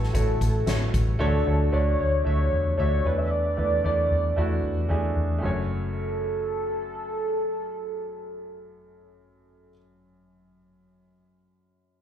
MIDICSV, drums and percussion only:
0, 0, Header, 1, 2, 480
1, 0, Start_track
1, 0, Key_signature, 3, "minor"
1, 0, Tempo, 527704
1, 1094, Time_signature, 4, 2, 24, 8
1, 10930, End_track
2, 0, Start_track
2, 0, Title_t, "Drums"
2, 28, Note_on_c, 9, 38, 31
2, 119, Note_off_c, 9, 38, 0
2, 134, Note_on_c, 9, 36, 84
2, 135, Note_on_c, 9, 42, 66
2, 225, Note_off_c, 9, 36, 0
2, 225, Note_off_c, 9, 42, 0
2, 374, Note_on_c, 9, 36, 75
2, 378, Note_on_c, 9, 42, 68
2, 465, Note_off_c, 9, 36, 0
2, 469, Note_off_c, 9, 42, 0
2, 612, Note_on_c, 9, 42, 79
2, 613, Note_on_c, 9, 38, 95
2, 703, Note_off_c, 9, 38, 0
2, 703, Note_off_c, 9, 42, 0
2, 855, Note_on_c, 9, 36, 88
2, 856, Note_on_c, 9, 42, 58
2, 946, Note_off_c, 9, 36, 0
2, 947, Note_off_c, 9, 42, 0
2, 10930, End_track
0, 0, End_of_file